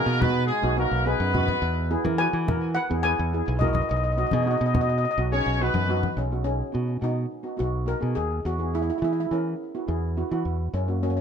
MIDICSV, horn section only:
0, 0, Header, 1, 2, 480
1, 0, Start_track
1, 0, Key_signature, 5, "major"
1, 0, Tempo, 570342
1, 1364, Time_signature, 4, 2, 24, 8
1, 9433, End_track
2, 0, Start_track
2, 0, Title_t, "Horn section"
2, 0, Program_c, 0, 61
2, 0, Note_on_c, 0, 58, 90
2, 0, Note_on_c, 0, 70, 98
2, 166, Note_off_c, 0, 58, 0
2, 166, Note_off_c, 0, 70, 0
2, 167, Note_on_c, 0, 59, 99
2, 167, Note_on_c, 0, 71, 107
2, 383, Note_on_c, 0, 56, 92
2, 383, Note_on_c, 0, 68, 100
2, 407, Note_off_c, 0, 59, 0
2, 407, Note_off_c, 0, 71, 0
2, 617, Note_off_c, 0, 56, 0
2, 617, Note_off_c, 0, 68, 0
2, 659, Note_on_c, 0, 58, 84
2, 659, Note_on_c, 0, 70, 91
2, 888, Note_on_c, 0, 59, 94
2, 888, Note_on_c, 0, 71, 102
2, 892, Note_off_c, 0, 58, 0
2, 892, Note_off_c, 0, 70, 0
2, 1725, Note_off_c, 0, 59, 0
2, 1725, Note_off_c, 0, 71, 0
2, 4482, Note_on_c, 0, 61, 94
2, 4482, Note_on_c, 0, 73, 102
2, 4703, Note_off_c, 0, 61, 0
2, 4703, Note_off_c, 0, 73, 0
2, 4730, Note_on_c, 0, 59, 88
2, 4730, Note_on_c, 0, 71, 96
2, 5203, Note_off_c, 0, 59, 0
2, 5203, Note_off_c, 0, 71, 0
2, 9433, End_track
0, 0, End_of_file